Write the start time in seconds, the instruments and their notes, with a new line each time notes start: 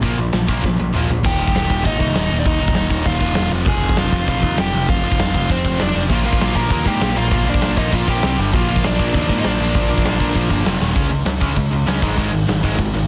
0.02 picked electric bass A#1, distorted electric guitar A#2 F3 A#3, kick, open hi-hat
0.16 picked electric bass A#1, distorted electric guitar A#2 F3, open hi-hat
0.33 picked electric bass A#1, distorted electric guitar A#2 F3, snare, open hi-hat
0.47 picked electric bass A#1, distorted electric guitar A#2 F3 A#3, kick, open hi-hat
0.62 picked electric bass A#1, distorted electric guitar A#2 F3, kick, snare
0.77 picked electric bass A#1, distorted electric guitar A#2 F3, high tom
0.93 picked electric bass A#1, distorted electric guitar A#2 F3 A#3, mid tom
1.08 picked electric bass A#1, distorted electric guitar A#2 F3, floor tom
1.23 picked electric bass D#1, distorted electric guitar D#2 A#2 D#3, overdriven electric guitar G4 G5, kick, crash
1.39 picked electric bass D#1, distorted electric guitar D#2 A#2 D#3, crash
1.47 kick
1.54 picked electric bass D#1, distorted electric guitar D#2 A#2 D#3, snare, crash
1.68 picked electric bass D#1, distorted electric guitar D#2 A#2 D#3, kick, crash
1.84 picked electric bass G#1, distorted electric guitar D#2 A#2 D#3, overdriven electric guitar D#4 D#5, kick, crash
1.99 picked electric bass C2, distorted electric guitar D#2 A#2 D#3, kick, crash
2.15 picked electric bass D#1, distorted electric guitar D#2 A#2 D#3, snare, crash
2.30 picked electric bass D#1, distorted electric guitar D#2 A#2 D#3, crash
2.40 overdriven electric guitar D5
2.45 picked electric bass D#1, distorted electric guitar D#2 A#2 D#3, overdriven electric guitar D#4 D#5, kick, crash
2.61 picked electric bass D#1, distorted electric guitar D#2 A#2 D#3, crash
2.68 kick
2.74 picked electric bass D#1, distorted electric guitar D#2 A#2 D#3, snare, crash
2.89 picked electric bass D#1, distorted electric guitar D#2 A#2 D#3, kick, crash
3.05 picked electric bass D#1, distorted electric guitar D#2 A#2 D#3, overdriven electric guitar F4 F5, kick, crash
3.19 picked electric bass D#1, distorted electric guitar D#2 A#2 D#3, kick, crash
3.35 picked electric bass E1, distorted electric guitar D#2 A#2 D#3, snare, crash
3.50 picked electric bass F1, distorted electric guitar F2 C3 F3, crash
3.65 picked electric bass F1, distorted electric guitar F2 C3 F3, overdriven electric guitar G#4, kick, crash
3.69 overdriven electric guitar G#5
3.81 picked electric bass F1, distorted electric guitar F2 C3 F3, crash
3.89 kick
3.96 picked electric bass F1, distorted electric guitar F2 C3 F3, overdriven electric guitar F4 F5, snare, crash
4.11 picked electric bass F1, distorted electric guitar F2 C3 F3, kick, crash
4.26 picked electric bass A#1, distorted electric guitar F2 C3 F3, overdriven electric guitar F4 F5, kick, crash
4.42 picked electric bass D#2, distorted electric guitar F2 C3 F3, kick, crash
4.58 picked electric bass F1, distorted electric guitar F2 C3 F3, overdriven electric guitar G4 G5, snare, crash
4.73 picked electric bass F1, distorted electric guitar F2 C3 F3, crash
4.88 picked electric bass F1, distorted electric guitar F2 C3 F3, overdriven electric guitar F4 F5, kick, crash
5.04 picked electric bass F1, distorted electric guitar F2 C3 F3, crash
5.12 kick
5.19 picked electric bass F1, distorted electric guitar F2 C3 F3, overdriven electric guitar F4 F5, snare, crash
5.34 picked electric bass F1, distorted electric guitar F2 C3 F3, kick, crash
5.50 picked electric bass F1, distorted electric guitar F2 C3 F3, overdriven electric guitar C4 C5, kick, crash
5.64 picked electric bass F1, distorted electric guitar F2 C3 F3, kick, crash
5.79 picked electric bass F1, distorted electric guitar F2 C3 F3, overdriven electric guitar D4 D5, snare, crash
5.94 picked electric bass F1, distorted electric guitar F2 C3 F3, crash
6.09 picked electric bass A#1, distorted electric guitar A#2 F3 A#3, overdriven electric guitar F4 F5, kick, crash
6.24 picked electric bass A#1, distorted electric guitar A#2 F3 A#3, overdriven electric guitar F4 F5, crash
6.33 kick
6.39 picked electric bass A#1, distorted electric guitar A#2 F3 A#3, snare, crash
6.54 picked electric bass A#1, distorted electric guitar A#2 F3 A#3, overdriven electric guitar A#4 A#5, kick, crash
6.70 picked electric bass D#2, distorted electric guitar A#2 F3 A#3, overdriven electric guitar A#4 A#5, kick, crash
6.85 picked electric bass G#2, distorted electric guitar A#2 F3 A#3, overdriven electric guitar G4 G5, kick, crash
7.01 picked electric bass A#1, distorted electric guitar A#2 F3 A#3, snare, crash
7.15 picked electric bass A#1, distorted electric guitar A#2 F3 A#3, overdriven electric guitar F4 F5, crash
7.31 picked electric bass A#1, distorted electric guitar A#2 F3 A#3, overdriven electric guitar F4 F5, kick, crash
7.46 picked electric bass A#1, distorted electric guitar A#2 F3 A#3, overdriven electric guitar D4 D5, crash
7.54 kick
7.62 picked electric bass A#1, distorted electric guitar A#2 F3 A#3, snare, crash
7.76 picked electric bass A#1, distorted electric guitar A#2 F3 A#3, overdriven electric guitar D#4 D#5, kick, crash
7.92 picked electric bass A#1, distorted electric guitar A#2 F3 A#3, overdriven electric guitar F4 F5, kick, crash
8.07 picked electric bass A#1, distorted electric guitar A#2 F3 A#3, overdriven electric guitar G4 G5, kick, crash
8.23 picked electric bass C2, distorted electric guitar C3 G3 C4, snare, crash
8.38 picked electric bass G1, distorted electric guitar G2 D3 G3, crash
8.53 picked electric bass A#1, distorted electric guitar A#2 F3 A#3, overdriven electric guitar F4 F5, kick, crash
8.68 picked electric bass A#1, distorted electric guitar A#2 F3 A#3, crash
8.76 kick
8.84 picked electric bass A#1, distorted electric guitar A#2 F3 A#3, overdriven electric guitar D4 D5, snare, crash
8.99 picked electric bass A#1, distorted electric guitar A#2 F3 A#3, kick, crash
9.14 picked electric bass D#2, distorted electric guitar A#2 F3 A#3, overdriven electric guitar D4 D5, kick, crash
9.29 picked electric bass G#2, distorted electric guitar A#2 F3 A#3, kick, crash
9.38 overdriven electric guitar D#4 D#5
9.44 picked electric bass A#1, distorted electric guitar A#2 F3 A#3, overdriven electric guitar D4 D5, snare, crash
9.60 picked electric bass A#1, distorted electric guitar A#2 F3 A#3, crash
9.75 picked electric bass A#1, distorted electric guitar A#2 F3 A#3, kick, crash
9.89 picked electric bass A#1, distorted electric guitar A#2 F3 A#3, crash
9.98 kick
10.04 picked electric bass A#1, distorted electric guitar A#2 F3 A#3, snare, crash
10.20 picked electric bass A#1, distorted electric guitar A#2 F3 A#3, kick, crash
10.35 picked electric bass A#1, distorted electric guitar A#2 F3 A#3, kick, crash
10.50 picked electric bass G1, distorted electric guitar A#2 F3 A#3, kick, crash
10.66 picked electric bass F1, distorted electric guitar F2 C3 F3, snare, crash
10.80 picked electric bass D#1, distorted electric guitar D#2 A#2 D#3, snare
10.95 picked electric bass C#2, distorted electric guitar C#3 G#3 C#4, kick, crash
11.10 picked electric bass C#2, distorted electric guitar C#3 G#3, crash
11.26 picked electric bass C#2, distorted electric guitar C#3 G#3, snare, crash
11.41 picked electric bass C#2, distorted electric guitar C#3 G#3 C#4, kick, crash
11.56 picked electric bass C#2, distorted electric guitar C#3 G#3, kick, crash
11.72 picked electric bass C#2, distorted electric guitar C#3 G#3, crash
11.86 picked electric bass C#2, distorted electric guitar C#3 G#3 C#4, snare, crash
12.01 picked electric bass G#1, distorted electric guitar G#2 D#3 G#3, kick, crash
12.16 picked electric bass G#1, distorted electric guitar G#2 D#3 G#3, kick, crash
12.32 picked electric bass G#1, distorted electric guitar G#2 D#3, crash
12.47 picked electric bass G#1, distorted electric guitar G#2 D#3, snare, crash
12.63 picked electric bass G#1, distorted electric guitar G#2 D#3 G#3, kick, crash
12.79 picked electric bass G#1, distorted electric guitar G#2 D#3, kick, crash
12.94 picked electric bass G#1, distorted electric guitar G#2 D#3, crash